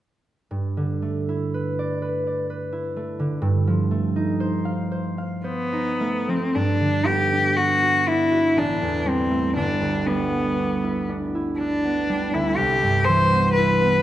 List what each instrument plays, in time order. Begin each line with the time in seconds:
0.51 harp G2
0.77 harp D3
1.02 harp A3
1.29 harp E4
1.54 harp B4
1.79 harp D5
2.02 harp B4
2.27 harp D5
2.50 harp B4
2.72 harp E4
2.96 harp A3
3.19 harp D3
3.42 harp G2
3.67 harp F3
3.91 harp A3
4.16 harp D#4
4.40 harp C5
4.65 harp F5
4.92 harp C5
5.18 harp F5
5.44 cello B3, harp C5
5.72 harp D#4
6.01 harp A3
6.28 harp F3, cello C4
6.55 harp G2, cello D4
6.80 harp D3
7.06 harp B3, cello G4
7.32 harp D4
7.57 harp B3, cello F#4
7.83 harp F#4
8.07 harp D4, cello E4
8.32 harp F#4
8.56 harp A1, cello D4
8.82 harp E2
9.05 harp G3, cello C4
9.31 harp A3
9.56 harp G1, cello D4
9.81 harp D2
10.07 harp G3, cello B3
10.33 harp B3
10.59 harp D4
10.84 harp E4
11.09 harp D4
11.35 harp E4
11.59 cello D4, harp D4
11.85 harp B3
12.09 harp G3
12.33 harp D2, cello E4
12.57 harp C2, cello G4
12.83 harp G2
13.04 cello C5
13.08 harp E3
13.33 harp B3
13.53 cello B4
13.58 harp E4
13.81 harp B3